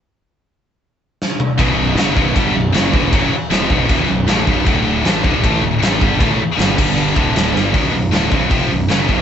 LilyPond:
<<
  \new Staff \with { instrumentName = "Distorted electric guitar" } { \clef bass \time 4/4 \key b \minor \tempo 4 = 156 r1 | <b,, fis, b,>4 <fis, cis fis>8 <b,, fis, b,>8 <g, d g>8 <b,, fis,>8 <fis, cis fis>8 <e, b, e>8 | <fis, cis fis>8 r8 <eis, c eis>8 <b,, fis, b,>8 <e, b, e>8 <b,, fis,>8 <a, e a>8 <b,, fis, b,>8 | <d, a, d>4 <a, e a>8 <d, a, d>8 <a, e a>8 <d, a,>8 <a, e a>8 <g, d g>8 |
<a, e a>8 r8 <g, d g>8 <g, d g>4 <d, a, d>4 <g, d g>8 | <b,, fis, b,>8 <b,, fis,>8 <d, a, d>8 <b,, fis, b,>8 <eis, c eis>8 <b,, fis,>8 <fis, cis fis>8 <b,, fis, b,>8 | }
  \new Staff \with { instrumentName = "Distorted electric guitar" } { \clef bass \time 4/4 \key b \minor r1 | <b,, fis, b,>4 <fis, cis fis>8 <b,, fis, b,>8 <g, d g>8 <b,, fis,>8 <fis, cis fis>8 <e, b, e>8 | <fis, cis fis>8 r8 <eis, c eis>8 <b,, fis, b,>8 <e, b, e>8 <b,, fis,>8 <a, e a>8 <b,, fis, b,>8 | <d, a, d>4 <a, e a>8 <d, a, d>8 <a, e a>8 <d, a,>8 <a, e a>8 <g, d g>8 |
<a, e a>8 r8 <g, d g>8 <g, d g>4 <d, a, d>4 <g, d g>8 | <b,, fis, b,>8 <b,, fis,>8 <d, a, d>8 <b,, fis, b,>8 <eis, c eis>8 <b,, fis,>8 <fis, cis fis>8 <b,, fis, b,>8 | }
  \new Staff \with { instrumentName = "Picked electric bass" } { \clef bass \time 4/4 \key b \minor r1 | b,,,4 fis,,8 b,,,8 g,,8 b,,,8 fis,,8 e,,8 | fis,,8 r8 eis,,8 b,,,8 e,,8 b,,,8 a,,8 b,,,8 | d,,4 a,,8 d,,8 a,,8 d,,8 a,,8 g,,8 |
a,,8 r8 g,,8 g,,4 d,,4 g,,8 | b,,,8 b,,,8 d,,8 b,,,8 eis,,8 b,,,8 fis,,8 b,,,8 | }
  \new DrumStaff \with { instrumentName = "Drums" } \drummode { \time 4/4 r4 r4 r4 sn8 toml8 | <cymc bd>4 <cymc sn>8 bd8 <cymc bd>4 <cymc sn>8 bd8 | <cymc bd>4 <cymc sn>8 bd8 <cymc bd>4 <cymc sn>8 bd8 | <cymc bd>4 <cymc sn>8 bd8 <cymc bd>4 <cymc sn>8 bd8 |
<cymc bd>4 <cymc sn>8 <cymc bd>8 cymc8 bd8 <cymc sn>8 sn8 | <hho bd>4 <hho sn>8 bd8 <hho bd>4 <hho sn>8 bd8 | }
>>